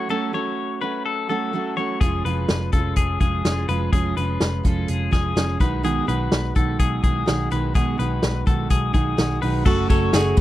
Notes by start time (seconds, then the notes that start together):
Already playing: C#5
0.09 F#3 A3 C#4 F#4 A4
0.33 F#3 A3 C#4 F#4 C#5
0.81 F#3 A3 C#4 F#4 B4
1.06 A4
1.29 F#3 A3 C#4 F#4 A4
1.53 F#3 A3 C#4 F#4
1.77 F#3 A3 C#4 F#4 C#5
2.01 F1 F3 G#3 C#4 F4 G#4, kick, closed hi-hat
2.25 F1 F3 G#3 C#4 F4 B4, closed hi-hat
2.49 F1, snare, closed hi-hat
2.72 F1 F3 G#3 C#4 F4 A4, kick, closed hi-hat
2.96 F1 G#4, kick, closed hi-hat
3.20 F1 F3 G#3 C#4 F4 G#4, kick, closed hi-hat
3.45 F1 F3 G#3 C#4 F4, snare, closed hi-hat
3.68 F1 F3 G#3 C#4 F4 B4, closed hi-hat
3.93 F1 F3 G#3 C#4 F4 G#4, kick, closed hi-hat
4.16 F1 F3 G#3 C#4 F4 B4, closed hi-hat
4.40 F1, snare, closed hi-hat
4.64 F1 F3 G#3 C#4 F4 A4, kick, closed hi-hat
4.88 F1 G#4, closed hi-hat
5.11 F1 F3 G#3 C#4 F4 G#4, kick, snare, closed hi-hat
5.36 F1 F3 G#3 C#4 F4, snare, closed hi-hat
5.59 B1 D#3 G#3 D#4 F#4 B4, kick, closed hi-hat
5.83 B2 D#3 G#3 D#4 F#4 G#4, closed hi-hat
6.07 B1 D#3 G#3 D#4 F#4 B4, closed hi-hat
6.32 B1, snare, closed hi-hat
6.55 B1 D#3 G#3 D#4 F#4 A4, kick, closed hi-hat
6.79 B1 G#4, kick, closed hi-hat
7.02 B1 D#3 G#3 D#4 F#4 G#4, kick, closed hi-hat
7.26 B1 D#3 G#3 D#4 F#4, snare, closed hi-hat
7.50 B1 D#3 G#3 D#4 F#4 B4, closed hi-hat
7.74 B1 B2 D#3 G#3 D#4 F#4 G#4, kick, closed hi-hat
7.98 B1 D#3 G#3 D#4 F#4 B4, closed hi-hat
8.23 B1, snare, closed hi-hat
8.46 B1 D#3 G#3 D#4 F#4 A4, kick, closed hi-hat
8.70 B1 G#4, kick, closed hi-hat
8.93 B1 D#3 G#3 D#4 F#4 G#4, kick, closed hi-hat
9.17 B1 D#3 G#3 D#4 F#4, snare, closed hi-hat
9.42 B1 D#3 G#3 D#4 F#4 B4, open hi-hat
9.65 F#1 F#3 A3 C#4 F#4 A4, kick, crash
9.90 F#1 A4 C#5, kick, ride, tambourine
10.13 F#1 F#3 A3 C#4 F#4 G#4, snare, ride, tambourine
10.37 F#1 B4, kick, ride, tambourine